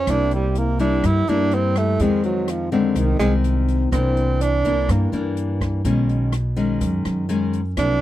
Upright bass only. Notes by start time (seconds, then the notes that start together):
0.07 C2
1.04 G2
1.27 G2
2.00 F2
2.95 C2
3.19 C2
3.92 C2
4.89 G2
5.12 G2
5.85 B1
6.81 F#2
7.05 F#2
7.77 C2